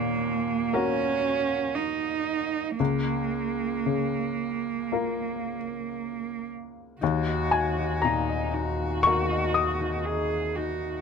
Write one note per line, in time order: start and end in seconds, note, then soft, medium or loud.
0.00 2.76 D#2 medium
0.00 1.35 A#2 soft
0.00 0.74 A#3 medium
0.73 2.75 A#3 soft
0.73 1.76 C#4 medium
0.73 2.76 F#4 soft
0.73 2.76 A#4 soft
1.75 2.78 D#4 medium
2.79 6.97 C#2 soft
2.79 6.45 A#3 medium
3.86 5.55 C#3 soft
4.92 6.98 A#3 soft
4.92 6.98 F4 soft
4.92 6.98 A#4 soft
7.01 11.01 D#2 soft
7.01 7.76 D#4 medium
7.01 8.07 F#4 medium
7.27 8.28 D#5 soft
7.51 11.01 F#4 soft
7.51 8.00 G#5 medium
7.78 8.53 D#4 medium
8.02 9.66 A#2 soft
8.02 8.55 D#4 soft
8.02 9.00 A#5 medium
8.29 9.29 D#5 soft
8.54 9.04 D#4 medium
8.54 10.07 F#4 medium
9.03 11.01 A#3 soft
9.03 9.79 D#4 medium
9.03 11.01 F#4 soft
9.03 11.01 A#4 soft
9.03 9.51 C#6 medium
9.30 9.54 D#5 soft
9.54 10.05 D#5 soft
9.54 11.01 D#6 medium
9.80 10.56 D#4 medium
10.05 10.57 G#4 medium
10.05 11.01 D#5 soft
10.55 11.01 D#4 medium
10.55 11.01 F#4 medium